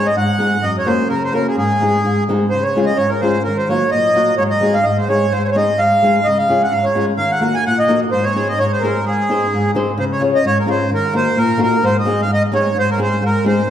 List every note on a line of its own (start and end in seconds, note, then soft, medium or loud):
0.06 0.16 D#5 medium
0.17 0.52 G#2 medium
0.17 0.65 F#5 medium
0.38 0.55 G#3 medium
0.38 0.55 C4 medium
0.38 0.55 D#4 medium
0.38 0.56 G#4 medium
0.63 0.99 F#2 medium
0.63 0.76 D#5 medium
0.78 0.88 C#5 medium
0.86 1.02 A#3 medium
0.86 1.03 C#4 medium
0.86 1.03 F#4 medium
0.86 1.03 A#4 medium
0.86 1.08 C5 medium
1.09 1.46 C#3 medium
1.09 1.23 A#4 medium
1.24 1.34 C5 medium
1.33 1.49 A#3 medium
1.33 1.50 C#4 medium
1.33 1.50 F#4 medium
1.33 1.47 A#4 medium
1.33 1.50 A#4 medium
1.48 1.56 G#4 medium
1.57 1.93 G#2 medium
1.57 2.24 G#4 medium
1.81 1.97 G#3 medium
1.81 1.97 C4 medium
1.81 1.97 D#4 medium
1.81 1.98 G#4 medium
2.05 2.40 G#2 medium
2.29 2.44 G#3 medium
2.29 2.44 C4 medium
2.29 2.45 D#4 medium
2.29 2.45 G#4 medium
2.50 2.88 C#3 medium
2.50 2.64 C5 medium
2.63 2.85 C#5 medium
2.75 2.91 G#3 medium
2.75 2.91 C#4 medium
2.75 2.92 F4 medium
2.75 2.92 G#4 medium
2.86 2.98 D#5 medium
2.96 3.34 G#2 medium
2.96 3.10 C#5 medium
3.09 3.21 A#4 medium
3.21 3.38 G#3 medium
3.21 3.38 C#4 medium
3.21 3.38 F4 medium
3.21 3.39 G#4 medium
3.21 3.43 C5 medium
3.44 3.82 D#3 medium
3.44 3.57 A#4 medium
3.57 3.68 C5 medium
3.69 3.84 F#3 medium
3.69 3.85 A#3 medium
3.69 3.85 D#4 medium
3.69 3.85 F#4 medium
3.69 3.90 C#5 medium
3.91 4.28 A#2 medium
3.91 4.35 D#5 medium
4.15 4.31 F#3 medium
4.15 4.31 A#3 medium
4.15 4.32 D#4 medium
4.15 4.32 F#4 medium
4.37 4.74 G#2 medium
4.37 4.43 C#5 medium
4.50 4.75 D#5 medium
4.61 4.77 G#3 medium
4.61 4.78 C4 soft
4.61 4.78 D#4 medium
4.61 4.79 G#4 medium
4.74 4.85 F5 medium
4.83 5.21 G#2 medium
4.83 4.97 D#5 medium
4.98 5.08 C5 medium
5.08 5.24 G#3 medium
5.08 5.25 C4 medium
5.08 5.25 D#4 medium
5.08 5.25 G#4 medium
5.08 5.33 C#5 medium
5.31 5.68 G#2 medium
5.31 5.43 C5 medium
5.44 5.50 C5 medium
5.44 5.47 C#5 medium
5.51 5.71 G#3 medium
5.51 5.71 C4 medium
5.51 5.56 C#5 medium
5.56 5.72 D#4 medium
5.56 5.72 G#4 medium
5.56 5.80 D#5 medium
5.79 6.14 G#2 medium
5.79 6.27 F5 medium
6.03 6.18 G#3 medium
6.03 6.18 C4 medium
6.03 6.19 D#4 medium
6.03 6.19 G#4 medium
6.24 6.61 C#3 medium
6.24 6.38 D#5 loud
6.38 6.62 F5 medium
6.48 6.64 G#3 medium
6.48 6.65 C#4 medium
6.48 6.65 F4 medium
6.48 6.65 G#4 medium
6.63 6.73 F#5 medium
6.72 7.07 G#2 medium
6.72 6.85 F5 medium
6.84 7.06 C#5 medium
6.95 7.11 G#3 medium
6.95 7.11 C#4 medium
6.95 7.12 F4 medium
6.95 7.12 G#4 medium
7.17 7.53 D#3 medium
7.17 7.31 F5 loud
7.31 7.55 F#5 medium
7.40 7.57 A#3 medium
7.40 7.57 D#4 medium
7.40 7.58 F#4 soft
7.40 7.58 A#4 medium
7.54 7.64 G#5 medium
7.66 8.01 A#2 medium
7.66 7.79 F#5 loud
7.79 8.00 D#5 medium
7.88 8.04 A#3 medium
7.88 8.04 D#4 medium
7.88 8.05 F#4 medium
7.88 8.05 A#4 medium
8.12 8.48 G#2 medium
8.12 8.25 C5 medium
8.24 8.48 C#5 medium
8.36 8.51 C4 medium
8.36 8.51 D#4 soft
8.36 8.52 G#4 medium
8.36 8.52 C5 medium
8.48 8.59 D#5 medium
8.59 8.94 G#2 medium
8.59 8.72 C#5 loud
8.72 8.83 C5 medium
8.80 8.98 C4 medium
8.80 8.98 D#4 medium
8.80 8.99 G#4 medium
8.80 9.05 A#4 medium
8.85 8.99 C5 medium
9.06 9.41 G#2 medium
9.06 9.71 G#4 medium
9.29 9.44 C4 medium
9.29 9.45 D#4 medium
9.29 9.45 G#4 soft
9.29 9.45 C5 medium
9.54 9.88 G#2 medium
9.75 9.90 C4 medium
9.75 9.91 D#4 medium
9.75 9.91 G#4 medium
9.75 9.91 C5 medium
9.98 10.33 C#3 medium
9.98 10.05 C5 medium
10.12 10.22 C#5 medium
10.20 10.36 C#4 medium
10.20 10.36 F4 medium
10.20 10.37 G#4 medium
10.20 10.37 C#5 medium
10.35 10.45 D#5 medium
10.45 10.80 G#2 medium
10.45 10.58 C#5 loud
10.60 10.69 A#4 medium
10.66 10.82 C#4 medium
10.66 10.83 F4 medium
10.66 10.83 G#4 medium
10.66 10.83 C#5 medium
10.70 10.90 C5 medium
10.91 11.26 D#3 medium
10.91 11.14 A#4 medium
11.13 11.29 A#3 medium
11.13 11.30 D#4 medium
11.13 11.30 F#4 medium
11.13 11.30 A#4 medium
11.13 11.39 C5 medium
11.37 11.72 A#2 medium
11.37 11.61 A#4 medium
11.58 11.75 A#3 medium
11.58 11.75 D#4 medium
11.58 11.75 F#4 medium
11.58 11.75 A#4 medium
11.62 11.85 A#4 medium
11.82 12.18 G#2 medium
11.82 11.97 C5 medium
11.99 12.21 D#5 medium
12.05 12.21 G#3 medium
12.05 12.22 C4 medium
12.05 12.22 D#4 medium
12.05 12.23 G#4 medium
12.22 12.31 F5 medium
12.28 12.64 G#2 medium
12.33 12.43 D#5 loud
12.52 12.68 G#3 medium
12.52 12.68 C4 medium
12.52 12.68 D#4 medium
12.52 12.69 G#4 medium
12.52 12.77 C#5 medium
12.75 13.10 G#2 medium
12.75 12.90 C5 loud
12.91 13.00 A#4 medium
12.98 13.14 G#3 medium
12.98 13.14 C4 medium
12.98 13.15 D#4 medium
12.98 13.15 G#4 medium
13.02 13.24 C5 medium
13.22 13.57 G#2 medium
13.22 13.45 A#4 medium
13.45 13.60 G#3 medium
13.45 13.60 C4 medium
13.45 13.61 D#4 medium
13.45 13.61 G#4 medium
13.45 13.70 C5 medium